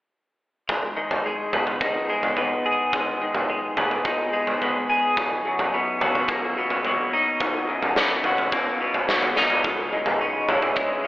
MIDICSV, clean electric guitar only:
0, 0, Header, 1, 2, 480
1, 0, Start_track
1, 0, Tempo, 559597
1, 596, Time_signature, 4, 2, 24, 8
1, 9497, End_track
2, 0, Start_track
2, 0, Title_t, "Clean electric guitar"
2, 0, Program_c, 0, 27
2, 592, Note_on_c, 0, 44, 43
2, 829, Note_on_c, 0, 51, 44
2, 1079, Note_on_c, 0, 56, 41
2, 1318, Note_on_c, 0, 59, 39
2, 1559, Note_on_c, 0, 63, 47
2, 1788, Note_off_c, 0, 56, 0
2, 1794, Note_off_c, 0, 44, 0
2, 1798, Note_on_c, 0, 56, 45
2, 2033, Note_off_c, 0, 51, 0
2, 2034, Note_off_c, 0, 59, 0
2, 2038, Note_on_c, 0, 59, 43
2, 2279, Note_on_c, 0, 68, 45
2, 2516, Note_on_c, 0, 44, 48
2, 2758, Note_on_c, 0, 51, 44
2, 2990, Note_off_c, 0, 56, 0
2, 3000, Note_on_c, 0, 56, 44
2, 3235, Note_off_c, 0, 59, 0
2, 3238, Note_on_c, 0, 59, 42
2, 3474, Note_off_c, 0, 63, 0
2, 3478, Note_off_c, 0, 68, 0
2, 3478, Note_on_c, 0, 63, 47
2, 3706, Note_off_c, 0, 56, 0
2, 3717, Note_off_c, 0, 44, 0
2, 3717, Note_on_c, 0, 56, 43
2, 3958, Note_off_c, 0, 51, 0
2, 3959, Note_off_c, 0, 59, 0
2, 3962, Note_on_c, 0, 59, 44
2, 4199, Note_on_c, 0, 68, 49
2, 4437, Note_off_c, 0, 56, 0
2, 4438, Note_off_c, 0, 68, 0
2, 4439, Note_on_c, 0, 35, 49
2, 4681, Note_on_c, 0, 42, 45
2, 4923, Note_on_c, 0, 47, 45
2, 5158, Note_off_c, 0, 59, 0
2, 5161, Note_on_c, 0, 54, 40
2, 5395, Note_off_c, 0, 63, 0
2, 5398, Note_on_c, 0, 58, 46
2, 5632, Note_off_c, 0, 47, 0
2, 5638, Note_off_c, 0, 35, 0
2, 5643, Note_on_c, 0, 47, 46
2, 5876, Note_off_c, 0, 54, 0
2, 5879, Note_off_c, 0, 42, 0
2, 5886, Note_on_c, 0, 54, 39
2, 6119, Note_on_c, 0, 63, 46
2, 6358, Note_on_c, 0, 35, 48
2, 6594, Note_on_c, 0, 42, 48
2, 6598, Note_off_c, 0, 58, 0
2, 6828, Note_off_c, 0, 47, 0
2, 6838, Note_on_c, 0, 47, 46
2, 7069, Note_off_c, 0, 54, 0
2, 7079, Note_on_c, 0, 54, 46
2, 7315, Note_on_c, 0, 58, 45
2, 7318, Note_off_c, 0, 63, 0
2, 7547, Note_off_c, 0, 47, 0
2, 7557, Note_off_c, 0, 35, 0
2, 7557, Note_on_c, 0, 47, 44
2, 7782, Note_off_c, 0, 54, 0
2, 7793, Note_on_c, 0, 54, 45
2, 7796, Note_off_c, 0, 42, 0
2, 8036, Note_on_c, 0, 63, 46
2, 8275, Note_off_c, 0, 54, 0
2, 8276, Note_off_c, 0, 58, 0
2, 8277, Note_off_c, 0, 47, 0
2, 8277, Note_off_c, 0, 63, 0
2, 8279, Note_on_c, 0, 37, 50
2, 8518, Note_on_c, 0, 44, 46
2, 8759, Note_on_c, 0, 49, 46
2, 9001, Note_on_c, 0, 52, 42
2, 9232, Note_on_c, 0, 56, 43
2, 9462, Note_off_c, 0, 49, 0
2, 9478, Note_off_c, 0, 37, 0
2, 9497, Note_off_c, 0, 44, 0
2, 9497, Note_off_c, 0, 52, 0
2, 9497, Note_off_c, 0, 56, 0
2, 9497, End_track
0, 0, End_of_file